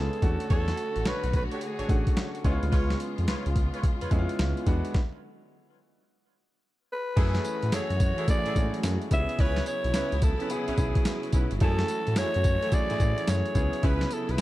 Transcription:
Already playing: C#3 G#3 B3 C#4 F4 G#4 A4
0.13 closed hi-hat
0.22 E2 D3 A3 C#4 D4 F#4 C#5, kick, closed hi-hat
0.40 closed hi-hat
0.50 E2 D4 F#4 A4 C#5, kick, closed hi-hat
0.68 snare, closed hi-hat
0.77 closed hi-hat
0.96 A1, closed hi-hat
1.05 B1 D4 F#4 A4 B4 C#5, snare, closed hi-hat
1.24 B1, closed hi-hat
1.33 B4, kick, closed hi-hat
1.51 D4 F#4 G#4 A4 C#5, closed hi-hat
1.61 closed hi-hat
1.79 A1 D4 F#4 A4 C#5, closed hi-hat
1.88 A1 A3 C#4 D4 F#4, kick, closed hi-hat
2.07 kick, closed hi-hat
2.17 snare, closed hi-hat
2.35 closed hi-hat
2.44 C#2 C#3 G#3 B3 C#4 E4 F4 B4 C#5, kick, closed hi-hat
2.52 F4
2.63 D2, closed hi-hat
2.72 C#2 F4 B4 C#5, kick, closed hi-hat
2.90 snare, closed hi-hat
3.00 closed hi-hat
3.18 F2, closed hi-hat
3.27 C#2 F4 B4 C#5, snare, closed hi-hat
3.46 C#2, closed hi-hat
3.56 kick, closed hi-hat
3.73 F4 B4 C#5, closed hi-hat
3.83 kick, closed hi-hat
4.01 F2 F4 B4 C#5, closed hi-hat
4.11 F2 G#3 B3 C#4 E4, kick, closed hi-hat
4.19 F4
4.29 closed hi-hat
4.39 C#2, snare, closed hi-hat
4.57 closed hi-hat
4.66 E2 D3 F#3 G#3 B3 D4 E4 F#4, kick, closed hi-hat
4.85 closed hi-hat
4.94 kick, snare
6.92 B4
7.16 F#2 E3 F#3 A3 C#4 E4 F#4 G#4 A4, kick, closed hi-hat, crash
7.35 snare, closed hi-hat
7.45 closed hi-hat, tambourine
7.63 A2, closed hi-hat
7.72 F#2 E4 G#4 A4 C#5, snare, closed hi-hat, tambourine
7.90 F#2, closed hi-hat
8.00 kick, closed hi-hat, tambourine
8.18 E4 G#4 A4, closed hi-hat
8.28 A3 C#4 E4 G#4 D5, kick, closed hi-hat, tambourine
8.46 A2 E4 G#4 A4, closed hi-hat
8.56 A2 G#3 C#4 E4 G#4, kick, closed hi-hat, tambourine
8.62 A3
8.74 closed hi-hat
8.83 F#2, snare, closed hi-hat, tambourine
9.02 closed hi-hat
9.11 C#2 C#3 B3 C#4 E4 G4 E5, kick, closed hi-hat, tambourine
9.19 G#4
9.29 closed hi-hat
9.39 C#2 C#4 E4 B4 C#5, kick, closed hi-hat
9.56 snare, closed hi-hat
9.66 C#5, closed hi-hat, tambourine
9.84 B1, closed hi-hat
9.94 C#2 C#4 E4 B4, snare, closed hi-hat, tambourine
10.12 C#2, closed hi-hat
10.22 A4, kick, closed hi-hat, tambourine
10.40 C#4 E4 B4, closed hi-hat
10.50 B3 C#4 E4 G#4, closed hi-hat, tambourine
10.68 B1 C#4 E4 B4, closed hi-hat
10.77 B1 B3 C#4 E4 G#4, kick, closed hi-hat, tambourine
10.95 kick, closed hi-hat
11.05 snare, closed hi-hat, tambourine
11.23 closed hi-hat
11.33 B1 C#4 E4 B4, kick, closed hi-hat, tambourine
11.51 G1, closed hi-hat
11.60 F#2 E3 G#3 A3 C#4 E4 F#4 G#4 A4 G#5, kick, closed hi-hat
11.68 A3
11.79 snare, closed hi-hat
11.88 closed hi-hat, tambourine
12.07 A2, closed hi-hat
12.16 F#2 A3 E4 G#4 C#5, snare, closed hi-hat, tambourine
12.34 F#2, closed hi-hat
12.44 kick, closed hi-hat, tambourine
12.62 A3 E4 G#4, closed hi-hat
12.71 A3 C#4 E4 G#4 D5, kick, closed hi-hat, tambourine
12.90 A2 A3 E4 G#4, closed hi-hat
12.99 A2 A3 C#4 E4 G#4, kick, closed hi-hat, tambourine
13.18 closed hi-hat
13.27 F#2 C#5, snare, closed hi-hat, tambourine
13.45 closed hi-hat
13.55 C#2 C#3 B3 C#4 E4 G#4, kick, closed hi-hat, tambourine
13.73 closed hi-hat
13.83 C#2 C#4 E4 B4, kick, closed hi-hat
14.01 snare, closed hi-hat
14.11 A4, closed hi-hat, tambourine
14.29 B1 B4, closed hi-hat
14.38 closed hi-hat

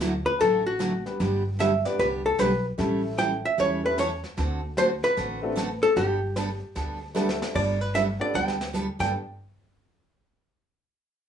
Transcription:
Already playing: D2 D5
0.00 D3 F#3 A3 E4 F#4, snare, hi-hat pedal
0.26 B4
0.40 A1 D3 F#3 A3 E4 F#4 A4, brush sweep, snare
0.67 F#4
0.79 D3 F#3 A3 E4 F#4, snare, hi-hat pedal
1.05 G3 B3 D4 G4 B4, snare
1.20 G1 D3 G3 B3 D4 G4, brush sweep, snare
1.59 D3 G3 B3 D4 G4 E5, snare, hi-hat pedal
1.85 G3 B3 D4 G4 B4 D5, snare
1.99 C2 D3 G3 B3 D4 G4 B4, brush sweep, snare
2.26 A4
2.38 B1 D3 G3 B3 D4 G4 B4, snare, hi-hat pedal
2.78 A1 E3 G3 A3 C#4 E4 G4 A4, brush sweep, snare
3.18 E3 G3 C#4 E4 A4 G5, snare, hi-hat pedal
3.45 E5
3.58 E2 E3 G3 C#4 E4 A4 C#5, brush sweep, snare
3.84 A3 C#4 E4 G4 B4
3.98 E3 G3 C#4 E4 A4 C#5, snare, hi-hat pedal
4.24 snare
4.37 D2 D3 A3 C4 F#4 A4, brush sweep, snare
4.77 D3 A3 C4 F#4 A4 C5, snare, hi-hat pedal
5.03 B4, snare
5.17 A1 D3 A3 C4 F#4 A4, brush sweep, snare
5.42 A3 C4 D4 F#4 A4
5.56 D3 A3 C4 F#4 A4, snare, hi-hat pedal
5.82 A4, snare
5.96 G1 G3 B3 D4 G4 A4, brush sweep, snare
6.36 G3 B3 D4 A4, snare, hi-hat pedal
6.75 D2 G3 B3 D4 A4, brush sweep, snare
7.14 G3 A3 B3 D4 G4 A4, snare, hi-hat pedal
7.29 snare
7.42 snare
7.54 G1 G3 B3 D4 A4 D5, brush sweep, kick, crash
7.81 B4
7.94 G3 B3 D4 A4 E5, snare, hi-hat pedal
8.20 B3 D4 G4 A4 D5
8.34 D2 G3 B3 D4 A4 G5, snare
8.48 snare
8.61 snare
8.73 G3 B3 D4 A4, snare, hi-hat pedal
8.99 G1 G3 B3 D4 G4 A4 G5, kick, snare, crash

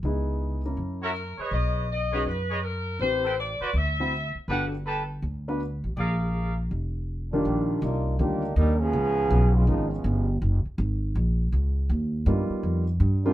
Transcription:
0.03 C#2 B3 D#4 E4 G#4
0.65 A#3 C#4 E4 A#4
0.77 F#2
1.02 F#4 A#4 C#5 E5
1.38 G#4 B4 C#5 D#5, muted upright bass stroke
1.51 B1 D#5
1.92 D#5
2.12 C#4 D#4 F#4 G#4 B4 C#5 D#5
2.25 F#2 B4
2.50 G#4 B4 C#5 D#5
2.65 A#4
2.99 A1 C4 E4 G4 B4 C5
3.24 A4 B4 C5 G5
3.39 D5
3.61 F#4 B4 C5 D5, muted upright bass stroke
3.73 D2 E5
4.00 C4 E4 F#4 C5
4.35 muted upright bass stroke
4.48 G1 B3 D4 F#4 G4 A4 B4 F#5
4.86 G4 A4 B4 A5
5.22 D2
5.48 B3 D4 F#4 B4
5.84 A1
5.97 A#1 G#4 A#4 D5 F5
6.71 F1
7.32 D#3 G3 A#3 D4 F4 G4
7.45 A#1
7.82 C2 A#3 D4 D#4 F4
8.18 D2 D#3 G3 A#3 D4 D#4 F4 G4
8.56 D#2 G3 D4 D#4 A#4
8.79 F3 B3 C#4 G#4
8.93 C#2
9.30 B1
9.55 G#3 B3 C#4 F4
9.67 G#1 D#3 F3 G#3 B3 C#4 D#4 F4
9.91 F3 G#3 B3 C#4
10.04 G1
10.42 F#1
10.65 muted upright bass stroke
10.78 G#1
11.15 A#1
11.52 C#2
11.89 D#2
12.26 G2 G3 A#3 B3 D#4 F4
12.50 muted upright bass stroke
12.63 F2
13.00 G2
13.24 D#3 G3 A#3 C4 D4 F4

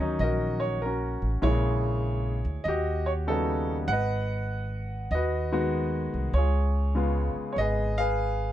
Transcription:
Already playing: F#4 C#5
0.00 D2 D#3 F#3 C#4 D#4
0.19 A#1 F#4 A#4 D#5
0.60 C#5
0.82 C#4 F#4 A#4
1.22 A1
1.42 A#1 C#3 G#3 A#3 E4 C#5
1.46 E4 G#4
2.45 D2
2.64 D#2 D#5
2.68 F#4 G4
3.06 C#5
3.27 C#3 G3 B3 D#4 A4
3.31 C#4 F#4
3.88 G#1 F#5
3.92 B4 D#5
5.11 D#2 F#4 B4 D#5
5.52 D#3 G#3 B3 F#4
6.14 C2
6.33 C#2 F4 C#5
6.38 G#4
6.95 C#3 G#3 B3 F4
7.35 muted upright bass stroke
7.53 G#1 C#5
7.58 G#4 B4 D#5
7.98 G#4 B4 F5

